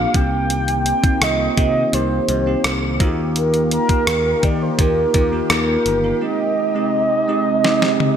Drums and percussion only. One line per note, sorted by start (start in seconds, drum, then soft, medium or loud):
0.14 kick loud
0.14 closed hi-hat medium
0.50 closed hi-hat medium
0.68 closed hi-hat soft
0.86 closed hi-hat medium
1.04 kick medium
1.04 closed hi-hat soft
1.22 cross-stick loud
1.22 closed hi-hat medium
1.57 kick medium
1.57 closed hi-hat medium
1.93 closed hi-hat medium
2.29 closed hi-hat medium
2.64 cross-stick medium
2.64 closed hi-hat medium
3.00 kick loud
3.00 closed hi-hat medium
3.36 closed hi-hat medium
3.54 closed hi-hat soft
3.71 closed hi-hat medium
3.89 kick medium
3.89 closed hi-hat medium
4.07 cross-stick loud
4.07 closed hi-hat loud
4.43 kick medium
4.43 closed hi-hat medium
4.79 kick medium
4.79 closed hi-hat medium
5.14 kick medium
5.14 closed hi-hat medium
5.50 cross-stick medium
5.50 closed hi-hat medium
5.86 closed hi-hat medium
7.64 snare medium
7.82 snare soft
8.00 high tom medium